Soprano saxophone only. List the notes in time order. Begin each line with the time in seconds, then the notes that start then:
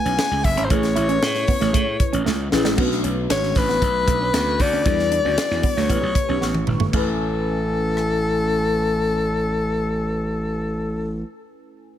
Already playing: G#5
0.44 E5
0.65 C5
0.70 C#5
3.31 C#5
3.58 B4
4.62 D5
5.66 C#5
6.95 A4